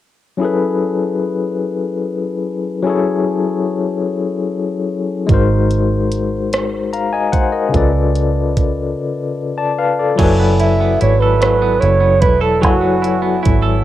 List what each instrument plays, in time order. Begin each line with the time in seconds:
0.37 tine electric piano F#3 C#4 E4
0.41 tine electric piano G#4 A4 B4
2.82 tine electric piano F#3 C#4 E4
2.87 tine electric piano G#4 A4 C#5
5.27 fingered electric bass G#1, tine electric piano G#3 D#4 F#4, kick, closed hi-hat
5.32 tine electric piano A#4 C5
5.71 closed hi-hat
6.12 closed hi-hat
6.53 cross-stick, closed hi-hat
6.93 tine electric piano F5 A#5, closed hi-hat
7.13 tine electric piano D#5 G#5
7.32 fingered electric bass C2, tine electric piano C5 F#5, kick, closed hi-hat
7.52 tine electric piano A#4 D#5
7.69 tine electric piano C#3 C#4 F4
7.74 fingered electric bass C#2, tine electric piano A4 B4 D5, kick, closed hi-hat
8.15 closed hi-hat
8.57 kick, closed hi-hat
9.58 tine electric piano D5 A5
9.79 tine electric piano B4 F5
9.99 tine electric piano A4 D5
10.16 fingered electric bass F#1, tine electric piano F#3 E4 G#5, clean electric guitar F#3, kick, closed hi-hat, crash
10.21 tine electric piano A4 B4
10.40 clean electric guitar B3
10.60 clean electric guitar E4, flugelhorn E5, closed hi-hat
10.80 clean electric guitar B3
11.01 fingered electric bass G#1, clean electric guitar E4, flugelhorn C#5, closed hi-hat
11.20 clean electric guitar A4, flugelhorn B4
11.41 clean electric guitar F#3, cross-stick, closed hi-hat
11.62 clean electric guitar B3
11.80 fingered electric bass F#1, clean electric guitar E4, flugelhorn C#5, closed hi-hat
12.00 clean electric guitar B3
12.21 fingered electric bass E1, clean electric guitar E4, flugelhorn B4, kick, closed hi-hat
12.41 clean electric guitar A4, flugelhorn A4
12.60 fingered electric bass F#1, tine electric piano F#3 E4 G#5, clean electric guitar F#3, flugelhorn F#4, kick, closed hi-hat
12.65 tine electric piano A4 C#5
12.81 clean electric guitar B3
13.02 clean electric guitar E4, closed hi-hat
13.22 clean electric guitar B3
13.43 fingered electric bass G#1, clean electric guitar E4, kick, closed hi-hat
13.62 clean electric guitar A4